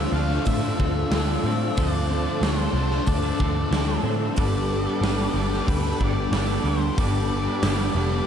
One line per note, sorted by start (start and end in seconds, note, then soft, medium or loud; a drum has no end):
0.00 0.13 D3 medium
0.00 0.15 D3 medium
0.00 0.67 D3 loud
0.00 0.11 F3 medium
0.00 0.11 F3 loud
0.00 0.14 F3 medium
0.00 0.14 A3 medium
0.00 0.12 C4 loud
0.00 1.11 C4 medium
0.00 0.12 D4 medium
0.00 0.13 D4 loud
0.00 0.15 D4 medium
0.00 4.33 F4 medium
0.00 0.14 A4 loud
0.00 8.27 A4 medium
0.00 0.14 E5 loud
0.00 4.35 A5 medium
0.00 1.74 D6 medium
0.12 0.37 D2 loud
0.12 0.28 F3 medium
0.12 1.77 A3 medium
0.12 0.28 C4 medium
0.12 1.78 D4 medium
0.12 0.28 D4 medium
0.12 0.28 A4 medium
0.12 0.44 F5 medium
0.12 muted overdriven electric guitar stroke soft
0.16 1.74 D3 medium
0.29 0.62 F3 medium
0.29 0.62 A3 medium
0.29 0.61 D4 medium
0.29 muted clean electric guitar stroke medium
0.29 snare soft
0.45 0.71 A2 medium
0.45 1.10 D4 medium
0.45 1.81 E5 loud
0.45 kick medium
0.45 open hi-hat medium
0.61 0.78 F3 medium
0.61 0.80 A3 medium
0.61 0.78 C4 medium
0.61 0.80 D4 medium
0.61 0.81 A4 medium
0.77 1.04 D2 loud
0.77 1.09 D3 medium
0.77 0.94 F3 medium
0.77 1.10 F3 medium
0.77 1.12 A3 loud
0.77 0.94 C4 medium
0.77 0.95 D4 medium
0.77 1.13 D4 loud
0.77 0.94 A4 medium
0.77 kick medium
0.95 muted clean electric guitar stroke soft
1.10 1.36 D2 medium
1.10 1.43 D3 medium
1.10 1.60 D3 medium
1.10 1.43 F3 loud
1.10 1.43 F3 medium
1.10 1.45 A3 loud
1.10 1.29 C4 medium
1.10 1.28 D4 loud
1.10 1.45 D4 loud
1.10 1.27 A4 loud
1.10 snare loud
1.10 open hi-hat medium
1.27 1.44 C4 medium
1.27 1.45 D4 medium
1.27 1.46 A4 medium
1.44 1.68 A2 medium
1.44 1.75 D3 medium
1.44 1.75 F3 medium
1.44 1.62 F3 medium
1.44 1.62 A3 medium
1.44 1.76 C4 medium
1.44 1.77 D4 medium
1.44 1.60 D4 medium
1.44 1.78 A4 medium
1.61 1.76 F3 medium
1.61 1.78 A3 medium
1.61 1.78 D4 medium
1.75 2.26 D2 loud
1.75 2.72 D3 medium
1.75 2.40 D3 medium
1.75 2.08 D3 loud
1.75 2.42 F3 medium
1.75 2.09 F3 loud
1.75 2.76 A3 medium
1.75 2.11 A3 loud
1.75 2.27 C4 medium
1.75 2.27 D4 medium
1.75 2.74 D4 medium
1.75 2.11 D4 loud
1.75 2.25 A4 loud
1.75 2.44 D5 loud
1.75 4.36 E6 loud
1.75 kick loud
1.75 open hi-hat medium
2.09 2.41 D3 medium
2.09 2.42 F3 medium
2.09 2.44 A3 medium
2.09 3.72 C4 medium
2.09 2.44 D4 medium
2.25 2.42 C4 medium
2.25 2.44 D4 medium
2.25 2.44 A4 medium
2.41 2.66 D2 medium
2.41 3.07 D3 loud
2.41 2.74 D3 loud
2.41 2.73 F3 loud
2.41 2.60 F3 loud
2.41 2.60 A3 medium
2.41 2.75 C4 loud
2.41 2.76 D4 loud
2.41 2.58 D4 loud
2.41 2.77 A4 loud
2.41 3.08 C5 medium
2.41 snare loud
2.41 open hi-hat medium
2.59 2.75 F3 medium
2.59 2.75 A3 medium
2.59 2.76 D4 medium
2.73 2.98 C2 loud
2.73 2.91 F3 medium
2.73 4.38 A3 medium
2.73 2.91 C4 medium
2.73 6.25 D4 loud
2.73 2.91 D4 medium
2.73 muted overdriven electric guitar stroke soft
2.78 4.36 D3 medium
2.78 2.91 A4 medium
2.91 3.26 F3 medium
2.91 3.25 A3 medium
2.91 3.24 D4 medium
2.91 muted clean electric guitar stroke soft
2.91 snare soft
3.06 3.32 D2 medium
3.06 3.70 D4 medium
3.06 4.02 D5 medium
3.06 kick medium
3.06 open hi-hat medium
3.23 3.39 F3 medium
3.23 3.41 A3 medium
3.23 3.40 C4 medium
3.23 3.42 D4 medium
3.23 3.41 D4 medium
3.23 3.42 A4 medium
3.38 3.64 D2 medium
3.38 3.72 D3 medium
3.38 3.57 F3 medium
3.38 3.72 F3 medium
3.38 3.74 A3 medium
3.38 3.57 C4 medium
3.38 3.58 D4 medium
3.38 4.38 A4 medium
3.38 kick medium
3.43 3.74 D4 medium
3.43 3.57 A4 medium
3.58 muted clean electric guitar stroke soft
3.70 3.96 D2 medium
3.70 4.21 D3 loud
3.70 4.04 D3 medium
3.70 4.03 F3 medium
3.70 4.04 F3 loud
3.70 3.91 C4 medium
3.70 5.02 D4 medium
3.70 snare loud
3.70 open hi-hat medium
3.74 4.06 A3 loud
3.74 3.90 D4 medium
3.74 4.06 D4 loud
3.74 3.89 A4 loud
3.89 4.04 C4 medium
3.89 4.06 D4 medium
3.89 4.07 A4 medium
4.03 4.28 A2 loud
4.03 4.36 D3 medium
4.03 4.35 F3 medium
4.03 4.23 F3 medium
4.03 4.23 A3 medium
4.03 4.36 C4 medium
4.03 4.38 D4 medium
4.03 4.21 D4 loud
4.03 4.39 A4 medium
4.21 4.37 F3 medium
4.21 4.39 A3 medium
4.21 4.39 D4 medium
4.36 4.86 G1 loud
4.36 5.37 G2 medium
4.36 5.01 G2 medium
4.36 5.33 D3 medium
4.36 4.68 D3 loud
4.36 5.01 G3 medium
4.36 5.34 G3 medium
4.36 4.69 G3 loud
4.36 4.87 B3 medium
4.36 4.70 B3 loud
4.36 4.86 D4 medium
4.36 4.71 D4 loud
4.36 4.84 A4 loud
4.36 5.69 D5 loud
4.36 8.27 G5 medium
4.36 8.27 B5 medium
4.36 8.27 D6 medium
4.36 kick loud
4.36 open hi-hat medium
4.69 5.01 D3 medium
4.69 5.02 G3 medium
4.69 7.30 B3 medium
4.69 5.03 B3 medium
4.69 5.04 D4 medium
4.85 5.03 B3 medium
4.85 5.04 D4 medium
4.85 5.05 A4 medium
5.01 5.26 G1 medium
5.01 6.32 G2 medium
5.01 5.34 D3 medium
5.01 5.34 G3 loud
5.01 5.20 G3 medium
5.01 5.35 B3 loud
5.01 5.18 B3 medium
5.01 5.36 D4 loud
5.01 5.18 D4 medium
5.01 5.37 A4 loud
5.01 snare loud
5.01 open hi-hat medium
5.18 5.36 G3 medium
5.18 5.36 B3 medium
5.18 5.36 D4 medium
5.34 5.59 G1 medium
5.34 6.94 G2 medium
5.34 6.96 D3 medium
5.34 5.86 G3 medium
5.34 6.99 G3 loud
5.34 5.52 B3 medium
5.34 5.52 D4 medium
5.34 5.50 A4 medium
5.34 muted overdriven electric guitar stroke soft
5.51 5.86 G3 medium
5.51 5.85 B3 medium
5.51 5.84 D4 medium
5.51 muted clean electric guitar stroke medium
5.51 snare soft
5.67 5.92 D2 medium
5.67 6.31 D4 medium
5.67 6.02 B4 loud
5.67 kick medium
5.67 open hi-hat medium
5.83 6.00 G3 medium
5.83 6.01 B3 medium
5.83 6.00 B3 medium
5.83 6.02 D4 medium
5.83 6.01 D4 medium
5.83 6.01 A4 medium
5.99 6.25 G1 loud
5.99 6.32 D3 medium
5.99 6.31 G3 medium
5.99 6.33 G3 medium
5.99 6.17 B3 medium
5.99 6.34 B3 medium
5.99 6.16 D4 medium
5.99 6.34 D4 medium
5.99 6.15 A4 loud
5.99 kick medium
6.04 6.35 D5 loud
6.16 muted clean electric guitar stroke soft
6.32 6.57 G1 medium
6.32 6.96 G2 medium
6.32 6.63 D3 medium
6.32 6.64 G3 medium
6.32 6.51 B3 loud
6.32 6.65 B3 loud
6.32 6.50 D4 loud
6.32 6.66 D4 medium
6.32 6.47 A4 loud
6.32 snare loud
6.32 open hi-hat medium
6.37 6.68 D5 loud
6.48 6.65 B3 medium
6.48 6.66 D4 medium
6.48 6.66 A4 medium
6.64 6.89 D2 loud
6.64 6.96 D3 medium
6.64 6.96 G3 medium
6.64 6.83 G3 medium
6.64 6.97 B3 medium
6.64 6.82 B3 medium
6.64 6.80 D4 medium
6.64 6.98 D4 medium
6.64 7.00 A4 medium
6.69 6.99 C5 medium
6.81 6.97 G3 medium
6.81 6.97 B3 medium
6.81 6.98 D4 medium
6.96 7.47 G1 loud
6.96 7.93 G2 medium
6.96 7.61 G2 loud
6.96 7.29 D3 loud
6.96 7.94 D3 medium
6.96 7.61 G3 medium
6.96 7.30 G3 loud
6.96 7.95 G3 medium
6.96 7.48 B3 medium
6.96 7.31 B3 loud
6.96 7.31 D4 loud
6.96 7.47 D4 medium
6.96 8.27 D5 medium
6.96 kick loud
6.96 open hi-hat medium
7.01 7.45 A4 loud
7.30 7.62 D3 medium
7.30 7.62 G3 medium
7.30 8.27 B3 medium
7.30 7.63 B3 medium
7.30 7.63 D4 medium
7.46 7.62 B3 medium
7.46 7.63 D4 medium
7.46 7.64 A4 medium
7.62 7.87 G1 medium
7.62 8.12 G2 medium
7.62 7.93 D3 medium
7.62 7.93 G3 loud
7.62 7.79 G3 medium
7.62 7.95 B3 loud
7.62 7.78 B3 medium
7.62 7.77 D4 loud
7.62 7.95 D4 loud
7.62 7.96 A4 loud
7.62 snare loud
7.62 open hi-hat medium
7.79 7.94 G3 medium
7.79 7.93 B3 medium
7.79 7.94 D4 medium
7.95 8.20 F1 loud
7.95 8.27 G2 medium
7.95 8.27 D3 medium
7.95 8.27 G3 medium
7.95 8.27 G3 loud
7.95 8.10 B3 medium
7.95 8.10 D4 loud
7.95 8.10 A4 medium
7.95 muted overdriven electric guitar stroke medium
8.11 8.27 G3 medium
8.11 8.27 B3 medium
8.11 8.27 D4 medium
8.11 muted clean electric guitar stroke medium